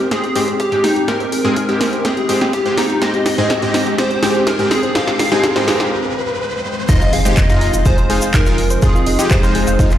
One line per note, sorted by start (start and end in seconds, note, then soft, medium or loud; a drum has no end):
0.00 6.85 G#3 medium
0.00 6.85 C4 medium
0.00 6.85 G5 medium
0.00 riser medium
0.11 0.30 G#1 medium
0.11 0.22 G#2 medium
0.11 0.22 G#3 medium
0.11 0.22 C4 medium
0.11 0.16 D#4 medium
0.11 0.22 G4 medium
0.11 0.56 G#4 loud
0.11 kick loud
0.11 snare medium
0.11 closed hi-hat medium
0.24 0.35 G4 medium
0.24 closed hi-hat soft
0.35 0.45 G#1 loud
0.35 0.52 G#2 medium
0.35 0.52 G#3 medium
0.35 0.52 C4 medium
0.35 0.52 G4 medium
0.35 0.47 G#4 medium
0.35 open hi-hat loud
0.48 0.56 C5 medium
0.48 closed hi-hat soft
0.60 0.78 G#1 medium
0.60 0.85 G4 medium
0.60 0.68 G#4 medium
0.60 kick loud
0.60 closed hi-hat medium
0.72 0.82 G#2 medium
0.72 0.82 G#3 medium
0.72 0.82 C4 medium
0.72 0.82 G4 medium
0.72 0.80 G4 loud
0.72 closed hi-hat soft
0.84 1.02 G#1 medium
0.84 1.10 D#4 medium
0.84 0.92 D#4 medium
0.84 snare medium
0.84 open hi-hat loud
0.96 1.04 G4 medium
0.96 closed hi-hat soft
1.08 1.25 G#2 medium
1.08 1.25 G#3 medium
1.08 1.25 C4 medium
1.08 1.25 G4 loud
1.08 1.20 G#4 medium
1.08 2.07 A#4 loud
1.08 kick loud
1.08 snare medium
1.08 closed hi-hat medium
1.20 1.28 C5 loud
1.20 closed hi-hat soft
1.32 1.42 G#1 medium
1.32 1.40 G#4 loud
1.32 open hi-hat loud
1.45 1.66 G#2 loud
1.45 1.66 G#3 medium
1.45 1.66 C4 medium
1.45 1.53 G4 medium
1.45 1.66 G#4 loud
1.45 closed hi-hat soft
1.56 1.75 G#1 medium
1.56 1.61 D#4 medium
1.56 kick loud
1.56 closed hi-hat medium
1.69 2.02 G#2 medium
1.69 2.02 G#3 medium
1.69 2.02 C4 medium
1.69 2.02 G4 loud
1.69 1.80 G4 medium
1.69 closed hi-hat soft
1.81 1.90 G#1 medium
1.81 1.92 G#4 medium
1.81 snare medium
1.81 open hi-hat loud
1.93 2.02 G#1 loud
1.93 2.01 C5 medium
1.93 closed hi-hat soft
2.05 2.23 G#1 medium
2.05 2.15 G#2 medium
2.05 2.15 G#3 medium
2.05 2.15 C4 medium
2.05 2.15 G4 medium
2.05 2.13 G#4 medium
2.05 2.53 G#4 loud
2.05 kick loud
2.05 snare medium
2.05 closed hi-hat medium
2.17 2.25 G4 loud
2.17 closed hi-hat soft
2.29 2.48 G#1 medium
2.29 2.46 G#2 medium
2.29 2.46 G#3 medium
2.29 2.46 C4 medium
2.29 2.37 D#4 medium
2.29 2.46 G4 medium
2.29 open hi-hat loud
2.41 2.49 G4 medium
2.41 snare medium
2.41 closed hi-hat soft
2.53 2.63 G#2 loud
2.53 2.79 G4 medium
2.53 2.65 G#4 medium
2.53 kick loud
2.53 closed hi-hat medium
2.66 2.76 G#2 medium
2.66 2.76 G#3 medium
2.66 2.76 C4 medium
2.66 2.76 G4 loud
2.66 2.73 C5 loud
2.66 closed hi-hat soft
2.77 2.96 G#1 loud
2.77 3.01 D#4 medium
2.77 2.86 G#4 loud
2.77 snare medium
2.77 open hi-hat loud
2.90 2.98 G4 medium
2.90 closed hi-hat soft
3.02 3.11 G#1 loud
3.02 3.18 G#2 medium
3.02 3.18 G#3 medium
3.02 3.18 C4 medium
3.02 3.07 D#4 medium
3.02 3.18 G4 loud
3.02 3.95 D#5 loud
3.02 kick loud
3.02 snare medium
3.02 closed hi-hat loud
3.14 3.25 G4 medium
3.14 closed hi-hat soft
3.26 3.44 G#1 medium
3.26 3.38 G#4 medium
3.26 snare medium
3.26 open hi-hat loud
3.38 3.60 G#2 loud
3.38 3.59 G#3 medium
3.38 3.59 C4 medium
3.38 3.59 G#4 loud
3.38 3.46 C5 medium
3.38 closed hi-hat soft
3.50 3.69 G#2 medium
3.50 3.58 G#4 medium
3.50 kick loud
3.50 snare medium
3.50 closed hi-hat loud
3.62 3.96 G#2 medium
3.62 3.96 G#3 medium
3.62 3.96 C4 medium
3.62 3.70 G4 loud
3.62 3.96 G4 loud
3.62 closed hi-hat soft
3.74 3.82 D#4 medium
3.74 snare medium
3.74 open hi-hat loud
3.86 3.94 G4 medium
3.86 closed hi-hat soft
3.98 4.09 G#2 medium
3.98 4.09 G#3 medium
3.98 4.09 C4 medium
3.98 4.09 G4 medium
3.98 4.10 G#4 medium
3.98 4.44 C5 loud
3.98 kick loud
3.98 snare medium
3.98 closed hi-hat medium
4.11 4.19 C5 loud
4.11 closed hi-hat soft
4.23 4.39 G#2 medium
4.23 4.39 G#3 medium
4.23 4.39 C4 medium
4.23 4.39 G4 medium
4.23 4.31 G#4 loud
4.23 snare medium
4.23 open hi-hat loud
4.35 4.43 G4 medium
4.35 closed hi-hat soft
4.47 4.65 G#1 medium
4.47 4.52 D#4 medium
4.47 4.58 A#4 medium
4.47 kick loud
4.47 snare medium
4.47 closed hi-hat loud
4.59 4.69 G#2 medium
4.59 4.69 G#3 medium
4.59 4.69 C4 medium
4.59 4.70 G4 medium
4.59 4.69 G4 loud
4.59 closed hi-hat soft
4.71 4.89 G#1 loud
4.71 4.83 G#4 medium
4.71 4.97 G#4 medium
4.71 snare medium
4.71 open hi-hat loud
4.83 4.91 C5 medium
4.83 closed hi-hat soft
4.95 5.12 G#2 medium
4.95 5.12 G#3 medium
4.95 5.12 C4 medium
4.95 5.12 G4 loud
4.95 5.03 G#4 medium
4.95 5.92 F5 loud
4.95 kick loud
4.95 snare medium
4.95 closed hi-hat loud
5.07 5.15 G4 loud
5.07 snare medium
5.07 closed hi-hat soft
5.19 5.29 G#1 medium
5.19 5.27 D#4 medium
5.19 snare loud
5.19 open hi-hat loud
5.32 5.53 G#2 loud
5.32 5.53 G#3 medium
5.32 5.53 C4 medium
5.32 5.40 G4 medium
5.32 5.53 G#4 loud
5.32 snare medium
5.32 closed hi-hat soft
5.44 5.55 G#4 medium
5.44 kick loud
5.44 snare loud
5.44 closed hi-hat loud
5.56 5.89 G#2 medium
5.56 5.89 G#3 medium
5.56 5.89 C4 medium
5.56 5.89 G4 loud
5.56 5.64 C5 loud
5.56 snare medium
5.56 closed hi-hat soft
5.68 5.76 G#4 loud
5.68 snare loud
5.68 open hi-hat loud
5.80 5.89 G#1 loud
5.80 5.88 G4 medium
5.80 snare medium
5.80 closed hi-hat soft
6.89 6.98 F1 medium
6.89 9.98 F3 medium
6.89 7.05 G#3 medium
6.89 9.98 G#3 medium
6.89 9.98 C4 medium
6.89 7.05 D#4 medium
6.89 6.94 D#4 medium
6.89 9.98 D#4 medium
6.89 7.05 F4 loud
6.89 6.94 D#5 medium
6.89 7.15 D#5 loud
6.89 kick loud
6.89 closed hi-hat medium
6.89 crash loud
6.89 impact medium
6.89 shaker medium
7.01 7.12 F4 medium
7.01 7.12 F5 medium
7.01 shaker soft
7.13 7.31 F1 medium
7.13 7.25 G#4 medium
7.13 7.39 F5 loud
7.13 7.25 G#5 medium
7.13 open hi-hat loud
7.25 7.47 G#3 loud
7.25 7.47 D#4 medium
7.25 7.47 G4 loud
7.25 7.33 C5 medium
7.25 7.33 C6 medium
7.25 closed hi-hat medium
7.25 shaker medium
7.37 7.56 F2 medium
7.37 7.45 G#4 medium
7.37 7.87 D#5 loud
7.37 7.45 G#5 medium
7.37 kick loud
7.37 clap loud
7.37 closed hi-hat medium
7.37 shaker medium
7.49 7.83 G#3 medium
7.49 7.83 D#4 medium
7.49 7.57 F4 loud
7.49 7.83 F4 loud
7.49 7.57 F5 medium
7.49 closed hi-hat soft
7.49 shaker soft
7.61 7.71 F1 medium
7.61 7.69 D#4 medium
7.61 7.69 D#5 medium
7.61 open hi-hat loud
7.74 7.83 F1 medium
7.74 7.82 F4 medium
7.74 7.82 F5 medium
7.74 closed hi-hat medium
7.74 shaker medium
7.85 8.04 F1 medium
7.85 7.96 G#3 medium
7.85 7.96 D#4 medium
7.85 7.96 F4 medium
7.85 7.97 G#4 medium
7.85 8.35 C5 loud
7.85 7.97 G#5 medium
7.85 kick loud
7.85 closed hi-hat medium
7.85 shaker medium
7.98 8.06 C5 loud
7.98 8.06 C6 medium
7.98 closed hi-hat soft
7.98 shaker soft
8.10 8.19 F1 loud
8.10 8.26 G#3 medium
8.10 8.26 D#4 medium
8.10 8.26 F4 medium
8.10 8.18 G#4 loud
8.10 8.18 G#5 medium
8.10 open hi-hat loud
8.21 8.30 F4 medium
8.21 8.30 F5 medium
8.21 closed hi-hat medium
8.21 shaker medium
8.34 8.52 F1 medium
8.34 8.39 D#4 medium
8.34 8.82 A#4 loud
8.34 8.39 D#5 medium
8.34 kick loud
8.34 clap loud
8.34 closed hi-hat medium
8.34 shaker medium
8.46 8.56 G#3 medium
8.46 8.56 D#4 medium
8.46 8.56 F4 loud
8.46 8.58 F4 medium
8.46 8.58 F5 medium
8.46 shaker soft
8.58 8.77 F1 medium
8.58 8.70 G#4 medium
8.58 8.70 G#5 medium
8.58 open hi-hat loud
8.70 8.78 C5 medium
8.70 8.78 C6 medium
8.70 closed hi-hat medium
8.70 shaker medium
8.82 8.92 F1 medium
8.82 8.99 G#3 medium
8.82 8.99 D#4 medium
8.82 8.99 F4 loud
8.82 9.32 G#4 loud
8.82 8.90 G#4 medium
8.82 8.90 G#5 medium
8.82 kick loud
8.82 closed hi-hat medium
8.82 shaker medium
8.95 9.03 F4 loud
8.95 9.03 F5 medium
8.95 shaker soft
9.06 9.16 F1 medium
9.06 9.15 D#4 medium
9.06 9.15 D#5 medium
9.06 open hi-hat loud
9.19 9.40 G#3 loud
9.19 9.40 D#4 medium
9.19 9.27 F4 medium
9.19 9.40 G4 loud
9.19 9.27 F5 medium
9.19 closed hi-hat medium
9.19 shaker medium
9.31 9.49 F1 medium
9.31 9.42 G#4 medium
9.31 9.98 C5 medium
9.31 9.42 G#5 medium
9.31 kick loud
9.31 clap loud
9.31 closed hi-hat medium
9.31 shaker medium
9.43 9.76 G#3 loud
9.43 9.76 D#4 medium
9.43 9.76 F4 loud
9.43 9.51 C5 loud
9.43 9.51 C6 medium
9.43 closed hi-hat soft
9.43 shaker soft
9.55 9.64 F1 medium
9.55 9.63 G#4 loud
9.55 9.63 G#5 medium
9.55 open hi-hat loud
9.67 9.76 F1 loud
9.67 9.75 F4 medium
9.67 9.75 F5 medium
9.67 closed hi-hat medium
9.67 shaker medium
9.79 9.98 F1 medium
9.79 9.90 G#3 medium
9.79 9.90 D#4 medium
9.79 9.84 D#4 medium
9.79 9.90 F4 medium
9.79 9.84 D#5 medium
9.79 kick loud
9.79 closed hi-hat medium
9.79 shaker medium
9.91 9.98 F4 medium
9.91 9.98 F5 medium
9.91 clap soft
9.91 closed hi-hat soft
9.91 shaker soft